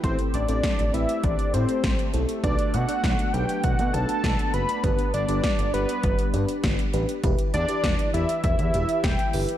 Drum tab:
HH |xxxxxxxxxxxxxxxx|xxxxxxxxxxxxxxxx|xxxxxxxxxxxxxxxx|xxxxxxxxxxxxxxox|
SD |----o-------o---|----o-------o---|----o-------o---|----o-------o---|
BD |o---o---o---o---|o---o---o---o---|o---o---o---o---|o---o---o---o---|